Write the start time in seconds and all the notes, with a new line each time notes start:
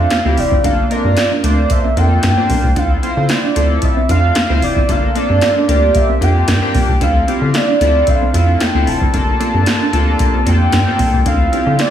Already playing: C4 D4 F4 A4 F5
0.10 snare, closed hi-hat
0.25 D2 C4 E4 F4 G4
0.37 F1 D5, muted clean electric guitar stroke, open hi-hat
0.51 F#1 C4, kick
0.64 G1 A#3 D4 F4 A4 F5, kick, closed hi-hat
0.78 muted clean electric guitar stroke
0.90 A#3 C4 D4 F4 A#4 D5, closed hi-hat
1.04 G2
1.17 muted clean electric guitar stroke, snare, closed hi-hat
1.31 D4
1.43 D2 A3 C4 D4 F4 C5 D5, closed hi-hat
1.50 A#3
1.70 E5, muted clean electric guitar stroke, kick, closed hi-hat
1.84 C4
1.96 F2 A#3 D4 F4 A4 G5, closed hi-hat
2.23 G2, muted clean electric guitar stroke, snare, closed hi-hat
2.37 A#3 C4 D4 F4 C5
2.50 C2 A#3, kick, open hi-hat
2.64 C#2, kick
2.76 D2 C4 D4 E4 F4 A4 F5, kick, closed hi-hat
2.91 muted clean electric guitar stroke
3.03 C4 E4 F4 C5, closed hi-hat
3.17 D3
3.24 E5
3.29 D5, muted clean electric guitar stroke, snare, closed hi-hat
3.44 D4
3.55 D2 C4 E4 F4 A4, closed hi-hat
3.82 E5, muted clean electric guitar stroke, kick, closed hi-hat
3.96 C4
4.09 F2 C4 D4 F4 A4 F5, closed hi-hat
4.35 snare, closed hi-hat
4.49 D2 C4 E4 F4 C5
4.62 F1 D5, muted clean electric guitar stroke, open hi-hat
4.76 F#1 C4, kick
4.88 G1 A#3 D4 F4 A4 F5, kick, closed hi-hat
5.03 muted clean electric guitar stroke
5.15 A#3 C4 D4 F4 A4 D5, closed hi-hat
5.29 G2
5.41 muted clean electric guitar stroke, snare, closed hi-hat
5.56 D4
5.68 D2 A#3 C4 D4 F4 G4 D5, closed hi-hat
5.95 E5, muted clean electric guitar stroke, kick, closed hi-hat
6.09 C4
6.21 F2 A#3 D4 F4 G4 G5, closed hi-hat
6.48 G2, muted clean electric guitar stroke, snare, closed hi-hat
6.62 A#3 C4 D4 F4 G4
6.75 C2 A#3, kick, open hi-hat
6.89 C#2, kick
7.00 D2 D3 F3 A3 C4 D4 E4 F4 A4 F5, kick, closed hi-hat
7.15 muted clean electric guitar stroke
7.28 C4 E4 F4 G4, closed hi-hat
7.41 D3
7.54 D5, muted clean electric guitar stroke, snare, closed hi-hat
7.68 D4
7.81 D2 C4 E4 F4 A4, closed hi-hat
8.07 F5, muted clean electric guitar stroke, kick, closed hi-hat
8.22 C4
8.34 F2 C4 D4 E4 F4 A4, closed hi-hat
8.60 G5, snare, closed hi-hat
8.74 D2 C4 E4 F4 A4
8.87 F1 A5, muted clean electric guitar stroke, open hi-hat
9.01 F#1 C4, kick
9.13 G1 G3 A#3 D4 F4 A4, kick, closed hi-hat
9.28 muted clean electric guitar stroke
9.40 A#3 C4 D4 F4 A4, closed hi-hat
9.54 G2
9.66 muted clean electric guitar stroke, snare, closed hi-hat
9.81 D4
9.92 D2 A#3 C4 D4 F4 A4, closed hi-hat
10.19 muted clean electric guitar stroke, kick, closed hi-hat
10.34 C4
10.45 F2 A#3 D4 F4 A4 G5, closed hi-hat
10.72 G2, muted clean electric guitar stroke, snare, closed hi-hat
10.86 A#3 C4 D4 F4 A4
10.99 C2 A#3, kick, open hi-hat
11.13 C#2, kick
11.25 D2 F3 C4 D4 E4 F4 A4 F5, kick, closed hi-hat
11.40 muted clean electric guitar stroke
11.52 C4 E4 F4 G4, closed hi-hat
11.66 D3
11.79 D5, muted clean electric guitar stroke, snare, closed hi-hat